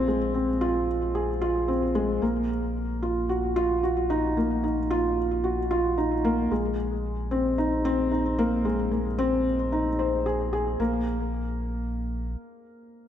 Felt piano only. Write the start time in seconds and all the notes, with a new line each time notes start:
Already playing: C4 F4 G#4
0.08 G#3
0.34 C4
0.61 F4
1.15 G#4
1.42 F4
1.68 C4
1.95 G#3
2.22 A#3
3.02 F4
3.29 F#4
3.56 F4
3.83 F#4
4.10 D#4
4.37 A#3
4.64 D#4
4.91 F4
5.44 F#4
5.71 F4
5.98 D#4
6.25 A#3
6.51 G#3
7.31 C4
7.58 D#4
7.85 C4
8.12 D#4
8.39 A#3
8.65 G#3
8.92 A#3
9.19 C4
9.72 D#4
9.99 C5
10.26 G#4
10.53 G#4
10.80 A#3